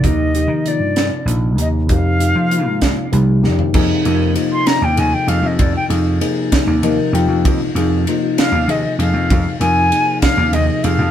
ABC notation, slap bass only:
X:1
M:6/8
L:1/16
Q:3/8=65
K:Fm
V:1 name="Slap bass" clef=bass
E,,3 E,2 G,,2 z B,,,2 E,,2 | F,,3 F,2 A,,2 z C,,2 F,, z | F,, z F,,2 z3 E,, E,, z F,, F,, | F,, z F,,2 z3 E,, E,, z F,, F,, |
F,, z F,,2 z3 E,, E,, z F,, F,, | F,, z F,,2 z3 E,, E,, z F,, F,, |]